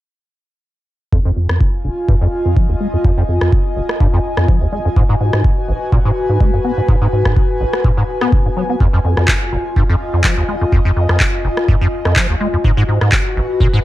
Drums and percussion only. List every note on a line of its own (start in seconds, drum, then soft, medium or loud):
1.13 kick loud
1.49 cross-stick medium
1.61 kick loud
2.09 kick loud
2.57 kick loud
3.05 kick loud
3.41 cross-stick medium
3.53 kick loud
3.89 cross-stick medium
4.01 kick loud
4.37 cross-stick medium
4.48 kick loud
4.96 kick loud
5.33 cross-stick medium
5.44 kick loud
5.92 kick loud
6.40 kick loud
6.88 kick loud
7.25 kick medium
7.25 cross-stick medium
7.36 kick loud
7.73 cross-stick medium
7.84 kick loud
8.21 cross-stick medium
8.32 kick loud
8.80 kick loud
9.17 cross-stick medium
9.28 kick loud
9.28 clap loud
9.76 kick loud
10.24 kick loud
10.24 clap loud
10.72 kick loud
11.09 cross-stick medium
11.20 kick loud
11.20 clap loud
11.57 cross-stick medium
11.68 kick loud
12.05 cross-stick medium
12.16 kick loud
12.16 clap loud
12.64 kick loud
13.01 cross-stick medium
13.12 kick loud
13.12 clap loud
13.60 kick loud